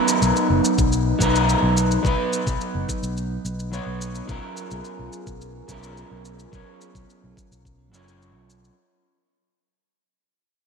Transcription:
0.00 1.16 F#3 medium
0.00 1.17 B3 medium
0.00 4.25 B3 medium
0.00 1.17 D#4 medium
0.00 4.26 D#4 medium
0.00 1.18 A#4 medium
0.08 shaker medium
0.22 0.31 B1 medium
0.22 shaker soft
0.36 shaker soft
0.50 0.59 F#1 medium
0.65 shaker medium
0.78 1.12 B1 medium
0.78 kick loud
0.78 shaker soft
0.92 shaker soft
1.19 1.54 B1 medium
1.19 2.00 F#3 medium
1.19 2.01 B3 medium
1.19 2.01 D#4 medium
1.19 2.02 A#4 medium
1.19 kick medium
1.19 shaker medium
1.36 shaker soft
1.49 shaker soft
1.63 1.96 B1 medium
1.77 shaker medium
1.91 shaker soft
2.03 2.13 B1 medium
2.03 3.68 F#3 medium
2.03 3.69 B3 medium
2.03 3.70 D#4 medium
2.03 3.70 B4 medium
2.03 kick loud
2.03 shaker soft
2.33 shaker medium
2.47 2.56 B1 medium
2.47 kick medium
2.47 shaker soft
2.61 shaker soft
2.75 2.84 F#1 loud
2.89 kick medium
2.89 shaker medium
3.03 3.36 B1 medium
3.03 shaker soft
3.17 shaker soft
3.45 3.78 B1 medium
3.45 shaker medium
3.59 shaker soft
3.72 4.25 F#3 medium
3.72 4.25 B3 medium
3.72 4.25 D#4 medium
3.72 4.26 C#5 medium
3.72 shaker soft
3.87 4.20 B1 medium
4.01 shaker medium
4.15 shaker soft
4.28 4.38 B1 medium
4.28 5.65 F#3 medium
4.28 8.73 B3 medium
4.28 5.65 C#4 medium
4.28 8.73 F4 medium
4.28 5.66 F4 medium
4.28 8.73 G#4 medium
4.28 8.73 A#4 medium
4.28 5.67 A#4 medium
4.28 kick loud
4.28 shaker soft
4.57 shaker medium
4.71 4.80 B1 medium
4.71 shaker soft
4.85 shaker soft
4.99 5.08 B1 medium
5.13 shaker medium
5.27 5.61 B1 medium
5.27 kick medium
5.27 shaker soft
5.41 shaker soft
5.68 6.03 B1 medium
5.68 6.49 F#3 medium
5.68 6.50 C#4 medium
5.68 6.50 F4 medium
5.68 6.51 A#4 medium
5.68 kick medium
5.68 shaker medium
5.83 shaker soft
5.97 shaker soft
6.11 6.45 B1 medium
6.25 shaker medium
6.39 shaker soft
6.52 6.62 B1 medium
6.52 7.90 F#3 medium
6.52 7.90 C#4 medium
6.52 7.91 F4 medium
6.52 7.91 C#5 medium
6.52 kick loud
6.52 shaker soft
6.81 shaker medium
6.95 7.04 B1 medium
6.95 kick medium
6.95 shaker soft
7.10 shaker soft
7.24 7.32 B1 medium
7.37 kick medium
7.37 shaker medium
7.52 7.93 B1 medium
7.52 shaker soft
7.65 kick medium
7.65 shaker soft
7.92 8.36 F#1 medium
7.92 8.73 F#3 medium
7.92 8.74 C#4 medium
7.92 8.74 F4 medium
7.92 8.75 C#5 medium
7.92 shaker medium
8.08 shaker soft
8.22 shaker soft
8.36 8.69 B1 medium
8.50 shaker medium
8.64 shaker soft

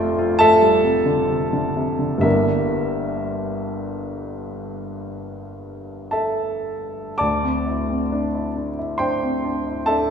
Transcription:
0.00 2.20 F1 medium
0.00 2.21 F2 medium
0.00 0.84 C3 medium
0.00 1.06 D3 medium
0.00 0.62 G3 soft
0.00 0.40 A3 medium
0.00 0.19 F4 medium
0.00 0.36 C5 medium
0.00 0.36 G5 medium
0.00 0.39 C6 loud
0.19 0.53 F4 medium
0.39 0.76 A3 medium
0.39 2.21 A4 medium
0.39 2.19 E5 medium
0.39 2.24 A5 loud
0.62 0.98 G3 soft
0.84 1.20 C3 soft
1.06 1.43 D3 soft
1.29 1.66 C3 soft
1.53 1.91 D3 soft
1.76 2.15 C3 soft
1.99 2.18 D3 soft
2.18 7.12 G2 soft
2.18 7.13 D3 soft
2.18 7.14 G3 soft
2.18 6.11 E5 medium
2.22 7.15 G1 soft
2.22 7.14 A#3 soft
2.22 7.15 D4 soft
2.22 6.08 E4 medium
2.22 6.08 A#4 medium
6.11 7.15 A4 medium
6.11 7.15 E5 soft
6.11 7.17 A5 medium
7.18 10.10 D2 soft
7.18 8.94 D5 medium
7.18 8.94 A5 medium
7.18 8.98 D6 medium
7.43 7.81 C4 soft
7.66 8.03 E4 soft
7.90 8.25 C4 soft
8.12 8.47 D4 soft
8.34 8.69 E4 soft
8.56 8.77 D4 soft
8.79 9.12 E4 soft
8.98 9.34 D4 soft
8.98 9.83 C5 medium
8.98 9.83 G5 medium
8.98 9.86 C6 medium
9.23 9.57 C4 soft
9.44 9.79 D4 soft
9.67 10.01 E4 soft
9.86 10.10 D4 soft
9.86 10.10 A4 medium
9.86 10.10 E5 medium
9.86 10.10 A5 medium

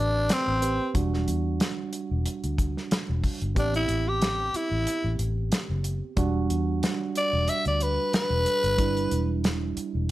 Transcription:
0.00 0.28 A1 medium
0.00 0.58 C4 medium
0.00 0.34 D4 medium
0.00 0.59 G4 medium
0.00 0.58 B4 medium
0.29 0.94 C4 medium
0.29 snare loud
0.29 closed hi-hat medium
0.48 0.79 A1 medium
0.62 0.95 C4 soft
0.62 0.95 G4 medium
0.62 0.95 B4 soft
0.62 closed hi-hat medium
0.94 1.26 E1 medium
0.94 3.52 G3 medium
0.94 3.52 D4 medium
0.94 3.52 F#4 medium
0.94 kick medium
0.94 closed hi-hat medium
1.14 snare soft
1.28 1.59 E2 medium
1.28 closed hi-hat medium
1.60 snare loud
1.60 closed hi-hat medium
1.93 closed hi-hat medium
2.11 2.25 E1 medium
2.26 closed hi-hat medium
2.44 2.75 D2 medium
2.44 closed hi-hat soft
2.58 kick medium
2.58 closed hi-hat medium
2.77 snare soft
2.91 muted fingered electric bass stroke soft
2.91 snare loud
2.91 closed hi-hat medium
3.09 3.23 E1 medium
3.24 kick medium
3.24 open hi-hat medium
3.41 3.56 G1 medium
3.41 closed hi-hat soft
3.55 3.87 A1 loud
3.55 6.13 B3 medium
3.55 6.13 C4 medium
3.55 3.74 D4 medium
3.55 6.13 G4 medium
3.55 kick loud
3.55 closed hi-hat medium
3.74 4.10 E4 medium
3.74 closed hi-hat soft
3.89 4.51 A1 medium
3.89 closed hi-hat medium
4.09 4.58 G4 medium
4.22 snare loud
4.22 closed hi-hat medium
4.54 5.18 E4 medium
4.54 muted fingered electric bass stroke soft
4.54 closed hi-hat medium
4.71 4.86 A1 medium
4.87 closed hi-hat medium
5.04 5.19 A1 medium
5.19 5.50 A1 medium
5.19 closed hi-hat medium
5.52 snare loud
5.52 closed hi-hat medium
5.70 6.01 F#1 medium
5.84 closed hi-hat medium
6.17 6.48 E1 medium
6.17 8.74 G3 medium
6.17 8.74 D4 medium
6.17 8.75 F#4 medium
6.17 kick loud
6.17 closed hi-hat medium
6.50 6.81 E2 medium
6.50 closed hi-hat medium
6.83 snare loud
6.83 closed hi-hat medium
7.15 7.51 D5 medium
7.15 closed hi-hat medium
7.33 7.47 E1 medium
7.48 7.65 E5 medium
7.48 closed hi-hat medium
7.65 7.97 D2 medium
7.65 7.84 D5 medium
7.65 closed hi-hat soft
7.80 8.13 B4 medium
7.80 closed hi-hat medium
8.13 9.41 B4 loud
8.13 muted fingered electric bass stroke soft
8.13 snare loud
8.13 closed hi-hat medium
8.30 8.45 E1 medium
8.46 closed hi-hat medium
8.64 9.09 G1 medium
8.64 closed hi-hat soft
8.77 10.11 G3 medium
8.77 10.11 D4 medium
8.77 10.11 E4 medium
8.77 kick loud
8.77 closed hi-hat medium
8.97 closed hi-hat soft
9.11 9.73 E1 medium
9.11 closed hi-hat medium
9.44 snare loud
9.44 closed hi-hat medium
9.77 muted fingered electric bass stroke soft
9.77 closed hi-hat medium
9.95 10.09 E1 medium

